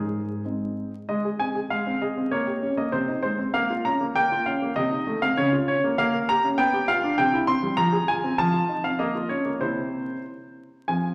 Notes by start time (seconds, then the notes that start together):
Already playing: G#2 G#4
0.45 G#3 C4 D#4
1.09 G#3 D#5
1.25 G#4
1.39 C4 G#5
1.55 G#4
1.70 G#3 F5
1.87 C4
2.02 G#4 D#5
2.17 C4
2.31 A#3 C#5
2.47 G4
2.62 C#4
2.77 A#3 D#5
2.92 C3 C5
3.08 D#4
3.23 G#3 C5
3.38 C4
3.54 A#3 F5
3.70 F4
3.85 C#4 A#5
4.01 A#3
4.16 A#3 G5
4.32 F4
4.46 C#4 F5
4.62 A#3
4.76 C3 D#5
4.92 D#4
5.07 A3
5.22 C4 F5
5.37 C#3 C#5
5.53 F4
5.68 C#4 C#5
5.84 A#3
5.98 A#3 F5
6.14 A#4
6.29 G4 A#5
6.44 C#4
6.58 B3 G5
6.73 G4
6.88 F4 F5
7.04 D4
7.18 C3 G5
7.34 E4
7.47 C4 C6
7.63 G3
7.77 F3 A#5
7.93 G#4
8.08 F4 G#5
8.24 C4
8.38 F3 A5
8.54 F4
8.69 D#4
8.84 C4 F5
8.99 A#3 D#5
9.15 F4
9.29 C#4 C#5
9.45 A#3
9.61 C3 C4 E4 C5
10.88 F3 C4 F4 G#5